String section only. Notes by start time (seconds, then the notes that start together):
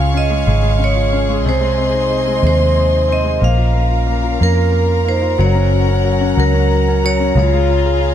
Already playing: G#4 F5 C#6
1.47 D#5 C6
3.43 A#4 F5 A#5
5.40 F#5
7.37 G#4 F5